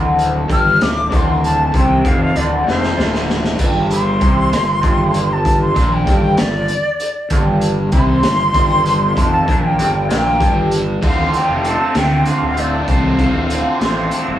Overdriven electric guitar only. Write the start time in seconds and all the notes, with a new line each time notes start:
Already playing: D2
0.48 G2
0.80 D2
1.11 D2
1.73 C3
2.04 F2
2.36 D2
2.66 F2
2.96 D2
3.59 G2
4.21 C3
4.53 G2
4.82 G2
5.75 A#2
6.06 G2
6.37 G2
7.31 G2
7.92 C3
8.23 G2
8.54 G2
9.16 F2
9.47 A#2
9.78 G2
10.09 A#2
10.40 G2
11.01 D2 A2 D3 A3 C4 F4
11.34 D3 A3 C4 F4
11.64 D3 A3 C4 F4
11.93 D2 A2 D3 A3 C4 F4
12.56 D3 A3 C4 F4
12.88 D2 A2 D3 A3 C4 F4
13.18 D3 A3 C4 F4
13.49 D3 A3 C4 F4
13.79 D2 A2 D3 A3 C4 F4